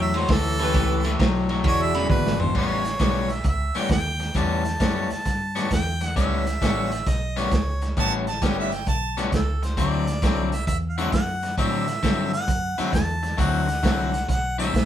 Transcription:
Already playing: E2 A2 F#3
0.01 E5
0.14 A2 F#3 C5, snare, ride
0.28 D2 A2 E3 A4, kick, snare, ride
0.59 A2 E3 C#4 G4 A4 B4, snare, ride
0.74 C#2 A2 E3, kick, snare, ride
1.04 A2 E3, snare, ride
1.19 B1 A2 F#3, kick, snare, ride
1.49 A2 F#3, snare, ride
1.64 E1 E2 B2 E4 F#4 G#4 C#5 D5, kick, ride
1.82 E5
1.94 E2 C#3 B5, snare, ride
2.10 G#1 E2 B2 B4, kick, high tom
2.27 snare
2.40 E2 B2 C5, floor tom
2.55 A1 A2 G3 B3 C#4 C#5, kick, snare, crash
2.85 muted clean electric guitar stroke, snare, closed hi-hat
2.99 B1 A2 G3 B3 C#4, kick, snare, closed hi-hat
3.29 E5, muted clean electric guitar stroke, snare, closed hi-hat
3.44 C#2 E5, muted clean electric guitar stroke, kick, closed hi-hat
3.74 A2 G3 B3 C#4 G5, muted fingered electric bass stroke, snare, closed hi-hat
3.89 D#2 G5, muted clean electric guitar stroke, kick, snare, closed hi-hat
4.19 muted clean electric guitar stroke, snare, closed hi-hat
4.34 E2 A2 G3 B3 C#4 A5, kick, closed hi-hat
4.65 muted clean electric guitar stroke, snare, closed hi-hat
4.80 F#2 A2 G3 B3 C#4, kick, snare, closed hi-hat
5.10 A5, muted clean electric guitar stroke, muted fingered electric bass stroke, snare, closed hi-hat
5.25 G2, muted clean electric guitar stroke, kick, snare, closed hi-hat
5.55 A2 G3 B3 C#4, snare, closed hi-hat
5.71 E2 G5, muted clean electric guitar stroke, kick, snare, closed hi-hat
6.01 F#5, muted clean electric guitar stroke, snare, closed hi-hat
6.16 C#2 A2 G3 B3 C#4 E5, kick, snare, closed hi-hat
6.47 muted clean electric guitar stroke, snare, closed hi-hat
6.61 A1 A2 G3 B3 C#4, kick, snare, closed hi-hat
6.91 muted clean electric guitar stroke, snare, closed hi-hat
7.06 B1 D#5, muted clean electric guitar stroke, kick, snare, closed hi-hat
7.36 A2 G3 B3 C#4 C#5, snare, closed hi-hat
7.51 C#2, muted clean electric guitar stroke, kick, snare, closed hi-hat
7.82 muted clean electric guitar stroke, snare, closed hi-hat
7.97 A1 A2 G3 B3 C#4 A5, kick, closed hi-hat
8.27 A5, muted clean electric guitar stroke, snare, closed hi-hat
8.42 G1 A2 G3 B3 C#4 G5, kick, snare, closed hi-hat
8.59 E5
8.72 G5, muted clean electric guitar stroke, snare, closed hi-hat
8.87 B1 A5, muted clean electric guitar stroke, kick, closed hi-hat
9.17 A2 G3 B3 C#4, snare, closed hi-hat
9.32 C#2 A4, muted clean electric guitar stroke, kick, snare, closed hi-hat
9.63 C5, muted clean electric guitar stroke, snare, closed hi-hat
9.77 D2 D3 F#3 C4 E4 D5, kick, snare, closed hi-hat
10.07 muted clean electric guitar stroke, snare, closed hi-hat
10.22 C2 D3 F#3 C4 E4, kick, snare, closed hi-hat
10.52 E5, muted clean electric guitar stroke, snare, closed hi-hat
10.67 E2 E5, muted clean electric guitar stroke, kick, closed hi-hat
10.89 F5
10.97 D3 F#3 C4 E4 F#5, snare, closed hi-hat
11.12 F#2 F#5, muted clean electric guitar stroke, kick, snare, closed hi-hat
11.43 muted clean electric guitar stroke, snare, closed hi-hat
11.57 A2 D3 F#3 C4 E4 E5, kick, snare, closed hi-hat
11.88 muted clean electric guitar stroke, snare, closed hi-hat
12.03 G2 D3 F#3 C4 E4, kick, snare, closed hi-hat
12.33 F#5, muted clean electric guitar stroke, snare, closed hi-hat
12.47 F#2, muted clean electric guitar stroke, kick, closed hi-hat
12.78 D3 F#3 C4 E4, muted fingered electric bass stroke, snare, closed hi-hat
12.93 E2 A5, muted clean electric guitar stroke, kick, snare, closed hi-hat
13.23 muted clean electric guitar stroke, snare, closed hi-hat
13.37 D2 D3 F#3 C4 E4 F#5, kick, snare, closed hi-hat
13.68 muted clean electric guitar stroke, snare, closed hi-hat
13.83 C2 D3 F#3 C4 E4, kick, snare, closed hi-hat
14.13 muted clean electric guitar stroke, snare, closed hi-hat
14.28 B1 F#5, muted clean electric guitar stroke, kick, snare, closed hi-hat
14.58 D3 F#3 C4 E4 E5, snare, closed hi-hat
14.74 A#1, muted clean electric guitar stroke, kick, snare, closed hi-hat

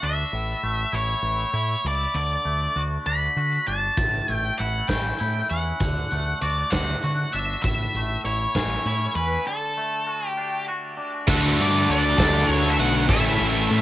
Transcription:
Already playing: A3 F#4
0.02 D2 D4 E5
0.33 A1 A2
0.63 A1 A3
0.93 A1 E4 C#5
1.22 A1
1.53 A2 E4
1.84 C#2 D5
2.14 D2 D3 D5
2.45 D2 A3
2.76 D2 F#4
3.06 D2 D4 B5
3.36 D3 F#4
3.67 G1 D4 A5
3.97 A1 A2, kick, closed hi-hat
4.28 A1 A3, closed hi-hat
4.35 G5
4.59 A1 E4 F#5, closed hi-hat
4.89 A1 C#4 G5, kick, snare, closed hi-hat
5.19 A2 E4, closed hi-hat
5.50 E2 C#4 F#5, closed hi-hat
5.80 D2 D3, kick, closed hi-hat
6.11 D2 A3, closed hi-hat
6.42 D2 F#4 D5, closed hi-hat
6.70 D2 D4 F#5, kick, snare, closed hi-hat
7.03 D3 F#4, closed hi-hat
7.33 G1 D4 E5, closed hi-hat
7.63 A1 A2 E5, kick, closed hi-hat
7.94 A1 A3, closed hi-hat
8.25 A1 E4 C#5, closed hi-hat
8.55 A1 C#4, kick, snare, closed hi-hat
8.85 A2 E4, closed hi-hat
9.15 E2 C#4 B4, closed hi-hat
9.47 D3 A4
9.77 A3
10.07 F#4
10.27 G4
10.37 D4
10.68 F#4
10.97 D4
11.28 D2 D3 A3 D4 F#4 A4, kick, crash
11.58 G2 D5, ride
11.88 D2 D5, ride
12.18 D2 D3 A3 D4 F#4 A4, kick, snare, ride
12.48 D2 C#5, ride
12.71 E5
12.78 B1 D3 A3 D4 F#4 A4 F#5, ride
13.08 A1 A2 E3 A3 C#4 E4 A4 E5, kick, ride
13.39 A1, ride
13.69 A2, ride

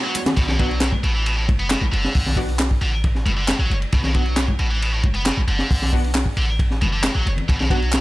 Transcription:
Already playing: B3 D4 F#4 D5 F#5
0.04 F#3
0.15 closed hi-hat, ride, high conga
0.26 snare, closed hi-hat, ride, low conga
0.37 B1 B2, kick, crash, ride
0.48 A2, snare, low conga
0.59 F#3 B3 D4 F#4, kick, ride
0.71 ride
0.81 A2, snare, clap, ride
0.92 kick, high conga
1.04 A1 B2, ride
1.15 E3
1.26 B2, ride
1.37 A2
1.48 F#1, kick, ride, high conga
1.59 B3, ride
1.70 B2, snare, clap, ride
1.81 A1, high conga
1.93 F#1 D3, ride
2.05 snare
2.15 B1, kick, open hi-hat
2.26 snare, low conga
2.36 B3 D4 F#4, kick, ride
2.49 ride
2.59 snare, clap, ride
2.71 kick
2.81 A1 D3, ride
3.04 kick, ride
3.15 snare
3.26 F#1 B2, ride, high conga
3.37 D3
3.48 A2, snare, clap, ride
3.59 A1 F#3
3.70 F#1, ride, high conga
3.82 ride
3.92 B1 B2, kick, ride
4.03 A2, snare, low conga
4.14 F#3 B3 D4 F#4, kick, ride
4.26 ride
4.37 A2, snare, clap, ride
4.48 kick, high conga
4.59 A1 B2, ride
4.71 E3
4.82 B2, ride
4.93 A2
5.03 F#1, kick, ride, high conga
5.14 B3, ride
5.25 B2, snare, clap, ride
5.37 A1, high conga
5.48 F#1 D3, ride
5.59 snare
5.70 B1, kick, open hi-hat
5.82 snare, low conga
5.92 B3 D4 F#4, kick, ride
6.04 ride
6.14 snare, clap, ride
6.26 kick
6.37 A1 D3, ride
6.59 kick, ride
6.71 snare
6.81 F#1 B2, ride, high conga, low conga
6.93 D3
7.04 A2, snare, clap, ride
7.15 A1 F#3
7.25 F#1, ride, high conga
7.37 ride, low conga
7.49 B1 B2, kick, ride
7.60 A2, snare, low conga
7.70 F#3 B3 D4 F#4, kick, ride
7.82 ride
7.93 A2, snare, clap, ride

